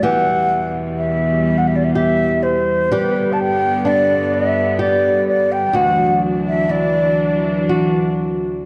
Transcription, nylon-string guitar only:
X:1
M:3/4
L:1/8
Q:1/4=63
K:D
V:1 name="Nylon-string guitar"
[E,G]4 G2 | [G,G]2 D2 G2 | [D,,F]2 E2 F2 |]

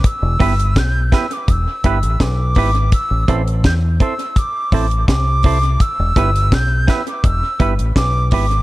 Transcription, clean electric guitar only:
X:1
M:4/4
L:1/8
Q:1/4=83
K:Ephr
V:1 name="Clean electric guitar"
z [B,EGB] z [B,EGB] z [B,EGB] z [B,EGB] | z [CEAc] z [CEAc] z [CEAc] z [CEAc] | z [B,EGB] z [B,EGB] z [B,EGB] z [B,EGB] |]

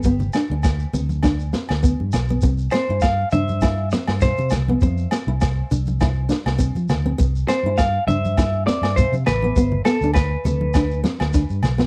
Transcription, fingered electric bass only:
X:1
M:4/4
L:1/16
Q:"Swing 16ths" 1/4=101
K:C
V:1 name="Fingered electric bass" clef=bass
G,,,2 z D,,3 D,,4- D,, D,,2 G,, B,,,2 | C,,2 z G,,3 G,,4- G,, G,,2 C, C,,2 | F,,2 z C,,3 C,,4- C,, C,,2 F, D,,2 | C,,2 z G,,3 G,,4- G,, G,,2 C, A,,,2 |
G,,,2 z D,,3 D,,4- D,, D,,2 G,, B,,,2 |]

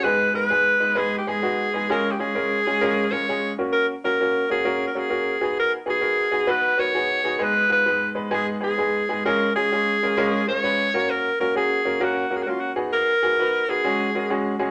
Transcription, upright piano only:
X:1
M:4/4
L:1/8
Q:"Swing" 1/4=130
K:F#
V:1 name="Upright piano"
[G,B,DG] [G,B,DB] [G,B,DG] [G,B,DB] [G,B,DB] [G,B,DG] [G,B,DF] [G,B,DG] | [G,CEG] [G,CEG] [G,CEA] [G,CEG] [G,CEA] [G,CEA] [G,CEG] [A,CFA]- | [A,CFA] [A,CFA] [A,CFA] [A,CFA] [A,CFA] [A,CFA] [A,CFA] [B,DFG]- | [B,DFG] [B,DFG] [B,DFA] [B,DFG] [B,DFB] [B,DFA] [B,DFG] [B,DFG] |
[G,B,DG] [G,B,DE] [G,B,DB] [G,B,DB] [G,B,DG] [G,B,DG] [G,B,DG] [G,B,DG] | [G,CEG] [G,CEG] [G,CEG] [G,CEA] [G,CEA] [G,CEA] [G,CEB] [A,CFA]- | [A,CFA] [A,CFA] [A,CFG] [A,CFA] [A,CFA] [A,CFA] [A,CFA] [B,DFG]- | [B,DFG] [B,DFG] [B,DFB] [B,DFA] [G,CFG] [G,CFA] [G,CFG] [G,CFG] |]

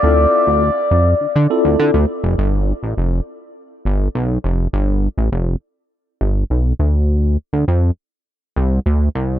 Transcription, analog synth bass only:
X:1
M:4/4
L:1/16
Q:1/4=102
K:Gmix
V:1 name="Analog synth bass" clef=bass
D,,2 z D,,2 z F,,2 D, D, z D,, D, D,, z F,,, | G,,,3 A,,, F,,,2 z4 G,,,2 B,,,2 F,,,2 | G,,,3 A,,, F,,,2 z4 G,,,2 B,,,2 D,,2- | D,,3 D,, F,,2 z4 C,,2 D,,2 C,,2 |]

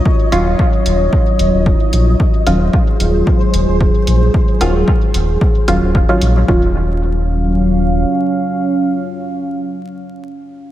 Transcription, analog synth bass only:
X:1
M:4/4
L:1/16
Q:"Swing 16ths" 1/4=112
K:Ebdor
V:1 name="Analog synth bass" clef=bass
z2 E,,,2 z2 E,,,2 z2 E,,, E,,,2 z B,,,2 | z2 E,,,2 z2 E,,,2 z2 E,,, E,,,2 z B,,,2 | z2 E,,,2 z2 E,,,2 z2 E,,, E,,,2 z B,,,2 | E,,,12 z4 |
z16 |]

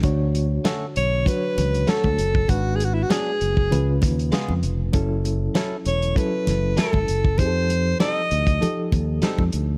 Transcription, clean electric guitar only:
X:1
M:4/4
L:1/8
Q:"Swing 16ths" 1/4=98
K:D
V:1 name="Clean electric guitar"
z2 [A,CFA] z3 [A,CFA] z | z2 [F,B,D^G] z3 [^G,B,^EG] z | z2 [F,CEA] z3 [F,CEA] z | z2 [G,=C_EA] z3 [G,CEA] z |]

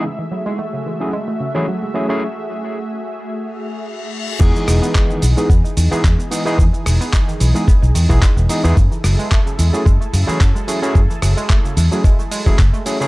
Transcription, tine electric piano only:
X:1
M:4/4
L:1/16
Q:"Swing 16ths" 1/4=110
K:E
V:1 name="Tine electric piano"
z6 z [F,A,CEG] z3 [F,A,CEG] z2 [F,A,CEG] [F,A,CEG] | z16 | [E,G,B,DG]6 z [E,G,B,DG] z3 [E,G,B,DG] z2 [E,G,B,DG] [E,G,B,DG] | z6 z [E,G,B,DG] z3 [E,G,B,DG] z2 [E,G,B,DG] [E,G,B,DG] |
z6 z [F,A,CEG] z3 [F,A,CEG] z2 [F,A,CEG] [F,A,CEG] | z6 z [F,A,CEG] z3 [F,A,CEG] z2 [F,A,CEG] [F,A,CEG] |]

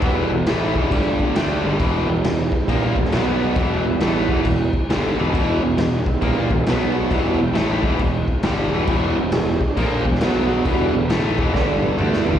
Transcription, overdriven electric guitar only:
X:1
M:4/4
L:1/8
Q:"Swing" 1/4=136
K:Em
V:1 name="Overdriven electric guitar" clef=bass
[E,,B,,E,] [E,,B,,] [A,,E,A,] [E,,B,,E,] [G,,D,G,]2 [D,A,D] [G,,D,G,] | [E,,B,,E,] [E,,B,,] [E,,B,,] z [^A,,=F,^A,] [E,,B,,] [B,,^F,B,]2 | [E,,B,,E,] [E,,B,,] [A,,E,A,] [E,,B,,E,] [E,,B,,] z [G,,D,G,] [E,,B,,E,] | [E,,B,,E,] [E,,B,,] [E,,B,,] z [^A,,=F,^A,] [E,,B,,] [B,,^F,B,]2 |
[E,,B,,E,] [E,,B,,] [A,,E,A,] [E,,B,,E,] [E,,B,,] z [G,,D,G,] [E,,B,,E,] | [E,,B,,E,] [E,,B,,] [E,,B,,] z [^A,,=F,^A,] [E,,B,,] [B,,^F,B,]2 | [E,,B,,E,] [E,,B,,] [A,,E,A,] [E,,B,,E,] [G,,D,G,]2 [D,A,D] [G,,D,G,] |]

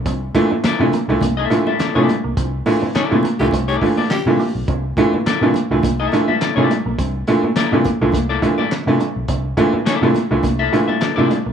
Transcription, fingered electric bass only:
X:1
M:4/4
L:1/16
Q:"Swing 16ths" 1/4=104
K:Cmix
V:1 name="Fingered electric bass" clef=bass
C,,2 z3 C, z C,, C,,2 z3 C, z C,, | C,,2 z3 C, z C,, C,,2 z3 C, z =B,,, | C,,2 z3 C, z C,, C,,2 z3 C, z =B,,, | C,,2 z3 C, z C,, C,,2 z3 C, z =B,,, |
C,,2 z3 C, z C,, C,,2 z3 C, z =B,,, |]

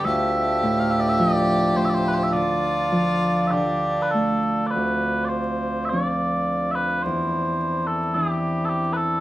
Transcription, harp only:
X:1
M:4/4
L:1/8
Q:1/4=53
K:Dm
V:1 name="Harp" clef=bass
D,, A,, F, A,, D, F, D, A, | D,,2 [F,CD]2 E,,2 [E,CD]2 |]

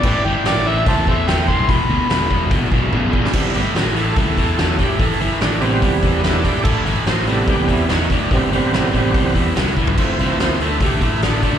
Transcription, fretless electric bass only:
X:1
M:4/4
L:1/16
Q:1/4=145
K:Am
V:1 name="Fretless electric bass" clef=bass
A,,, z G,,, z A,,,4- A,,, E,,6 B,,, | E,,, z D,, z E,,,4- E,,, B,,,6 ^G,,, | A,,, z G,,, z A,,,4- A,,, E,,6 A,, | A,,, z G,,, z A,,,4- A,,, E,,6 A,, |
A,,, z G,,, z A,,,4- A,,, E,,6 A,, | A,,, z G,,, z A,,,4- A,,, E,,3 C,,2 D,,2 | D,, z C,, z D,,4- D,, A,,,6 D, |]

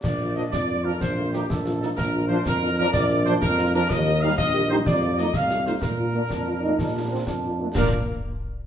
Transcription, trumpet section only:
X:1
M:6/8
L:1/8
Q:3/8=124
K:Bb
V:1 name="Trumpet section"
d2 e d2 B | c2 G A2 A | B2 c B2 B | d2 c B2 B |
e2 f e2 c | d2 e f2 c | B6- | B4- B z |
B z4 z |]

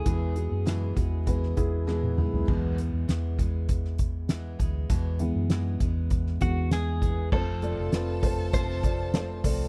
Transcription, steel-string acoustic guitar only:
X:1
M:4/4
L:1/8
Q:1/4=99
K:Emix
V:1 name="Steel-string acoustic guitar" clef=bass
[E,,B,,E,G,B,G] [E,G,B,G] [E,,B,,E,G,B,G] [E,G,B,G] [E,G,B,G]2 [E,,B,,E,G,B,G] [E,G,B,G] | [E,,B,,E,G,B,G] [E,G,B,G] [E,G,B,G] [E,G,B,G]3 [E,G,B,G] [E,G,B,G] | [E,,B,,E,G,B,G] [E,G,B,G] [E,G,B,G] [E,G,B,G]3 [E,G,B,G] [E,G,B,G] | [=F,,=C,=F,A,=C=F]2 [F,A,CF]2 [F,,C,F,A,CF]2 [F,A,CF] [F,A,CF] |]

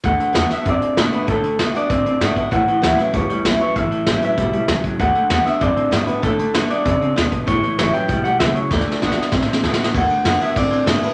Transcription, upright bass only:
X:1
M:4/4
L:1/8
Q:1/4=194
K:D
V:1 name="Upright bass" clef=bass
D,, z E,, z F,, z B,, z | A,, z D,, z F,, z G,, z | A,, z D,, z C,, z B,,, z | A,,, z G,,, z B,,, z C,, z |
D,, z E,, z F,, z G,, z | A,, z G,, z F,, z D,, z | A,,, z G,,, z3 C,, z | D,, z A,,, z B,,, z C,, z |
D,, z F,, z A,, z G,, z |]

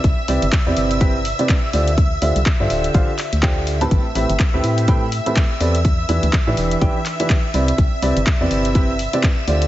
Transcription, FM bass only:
X:1
M:4/4
L:1/16
Q:"Swing 16ths" 1/4=124
K:C
V:1 name="FM bass" clef=bass
C,, z C,, G,,, z E,, G,,,4- G,,, z3 D,,2- | D,,2 D,, C,, z G,, D,,, z A,,, z2 D,,4- D,, | A,,, z A,,, G,,, z D,, A,,4- A,, z3 E,,2- | E,,2 E,, D,, z A,, E,,, z B,,, z4 z C,, z |
C,, z C,, G,,, z E,, G,,,4- G,,, z3 D,,2 |]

